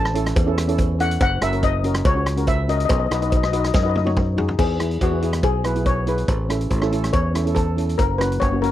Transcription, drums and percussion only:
0.05 cross-stick
0.15 closed hi-hat
0.26 cross-stick, closed hi-hat
0.36 kick, closed hi-hat, cowbell
0.58 cross-stick, closed hi-hat
0.69 closed hi-hat
0.78 kick, closed hi-hat, cowbell
1.00 closed hi-hat
1.11 closed hi-hat
1.21 kick, closed hi-hat, cowbell
1.42 cross-stick, closed hi-hat
1.53 closed hi-hat
1.63 kick, closed hi-hat, cowbell
1.84 closed hi-hat
1.94 cross-stick, closed hi-hat
2.05 kick, closed hi-hat, cowbell
2.26 cross-stick, closed hi-hat
2.37 closed hi-hat
2.47 kick, closed hi-hat, cowbell
2.69 closed hi-hat
2.80 closed hi-hat
2.89 kick, closed hi-hat, cowbell
3.11 cross-stick, closed hi-hat
3.22 closed hi-hat
3.32 kick, closed hi-hat, cowbell
3.43 cross-stick
3.53 closed hi-hat
3.64 cross-stick, closed hi-hat
3.74 kick, snare, cowbell
3.95 high tom
4.07 high tom
4.17 kick, mid tom, cowbell
4.38 floor tom
4.48 floor tom
4.59 kick, crash, cowbell
4.80 cross-stick, closed hi-hat
4.91 closed hi-hat
5.01 kick, closed hi-hat, cowbell
5.22 closed hi-hat
5.33 cross-stick, closed hi-hat
5.43 kick, closed hi-hat, cowbell
5.64 cross-stick, closed hi-hat
5.76 closed hi-hat
5.86 kick, closed hi-hat, cowbell
6.07 closed hi-hat
6.18 closed hi-hat
6.28 kick, closed hi-hat, cowbell
6.50 cross-stick, closed hi-hat
6.61 closed hi-hat
6.71 kick, closed hi-hat, cowbell
6.82 cross-stick
6.92 closed hi-hat
7.04 cross-stick, closed hi-hat
7.13 kick, closed hi-hat, cowbell
7.35 cross-stick, closed hi-hat
7.47 closed hi-hat
7.56 kick, closed hi-hat, cowbell
7.78 closed hi-hat
7.89 closed hi-hat
7.99 kick, closed hi-hat, cowbell
8.21 cross-stick, closed hi-hat
8.32 closed hi-hat
8.42 kick, closed hi-hat, cowbell
8.63 closed hi-hat

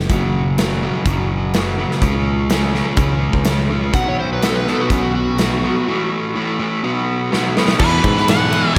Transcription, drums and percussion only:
0.10 kick, closed hi-hat
0.58 snare, closed hi-hat
1.06 kick, closed hi-hat
1.53 snare, closed hi-hat
1.91 snare
2.02 kick, closed hi-hat
2.49 snare, closed hi-hat
2.75 snare
2.97 kick, closed hi-hat
3.33 kick
3.44 snare, closed hi-hat
3.94 kick, closed hi-hat
4.42 snare, closed hi-hat
4.67 snare
4.90 kick, closed hi-hat
5.38 snare, closed hi-hat
7.33 snare
7.57 snare
7.68 snare
7.79 kick, crash
8.04 kick, ride
8.17 snare
8.28 snare, ride
8.52 ride

